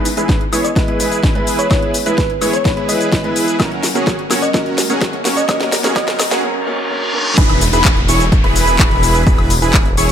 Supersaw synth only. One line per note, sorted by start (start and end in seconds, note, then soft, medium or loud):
0.17 0.43 E4 medium
0.17 0.43 G#4 medium
0.17 0.43 B4 medium
0.53 0.69 E4 medium
0.53 0.69 G#4 medium
0.53 0.69 C#5 loud
0.88 1.21 E4 medium
0.88 1.21 G#4 medium
0.88 1.21 B4 loud
1.23 1.68 E4 medium
1.23 1.68 G#4 medium
1.23 1.68 B4 loud
1.71 1.97 E4 medium
1.71 1.97 G#4 medium
1.71 1.97 B4 medium
2.06 2.32 E4 medium
2.06 2.32 G#4 medium
2.06 2.32 B4 medium
2.41 2.58 E4 medium
2.41 2.58 G#4 medium
2.41 2.58 C#5 loud
2.77 3.10 E4 medium
2.77 3.10 G#4 medium
2.77 3.10 B4 loud
3.12 3.57 E4 medium
3.12 3.57 G#4 medium
3.12 3.57 B4 loud
3.60 3.86 C#4 medium
3.60 3.86 F#4 medium
3.60 3.86 A#4 medium
3.95 4.21 C#4 medium
3.95 4.21 F#4 medium
3.95 4.21 G#4 medium
4.30 4.47 C#4 medium
4.30 4.47 F#4 medium
4.30 4.47 C#5 loud
4.54 4.80 C#4 medium
4.54 4.80 F#4 medium
4.54 4.80 A#4 medium
4.90 5.16 C#4 medium
4.90 5.16 F#4 medium
4.90 5.16 G#4 medium
5.25 5.41 C#4 medium
5.25 5.41 F#4 medium
5.25 5.41 C#5 loud
5.49 5.75 C#4 medium
5.49 5.75 F#4 medium
5.49 5.75 A#4 medium
5.84 5.94 C#4 medium
5.84 5.94 F#4 medium
5.84 5.94 G#4 medium
5.96 6.22 C#4 medium
5.96 6.22 F#4 medium
5.96 6.22 A#4 medium
6.31 6.41 C#4 medium
6.31 6.41 F#4 medium
6.31 6.41 G#4 medium
7.38 7.64 E4 medium
7.38 7.64 G#4 medium
7.38 7.64 B4 medium
7.73 7.99 E4 medium
7.73 7.99 G#4 medium
7.73 7.99 B4 medium
8.08 8.25 E4 medium
8.08 8.25 G#4 medium
8.08 8.25 C#5 loud
8.44 8.77 E4 medium
8.44 8.77 G#4 medium
8.44 8.77 B4 loud
8.79 9.24 E4 medium
8.79 9.24 G#4 medium
8.79 9.24 B4 loud
9.27 9.53 E4 medium
9.27 9.53 G#4 medium
9.27 9.53 B4 medium
9.62 9.88 E4 medium
9.62 9.88 G#4 medium
9.62 9.88 B4 medium
9.97 10.12 E4 medium
9.97 10.12 G#4 medium
9.97 10.12 C#5 loud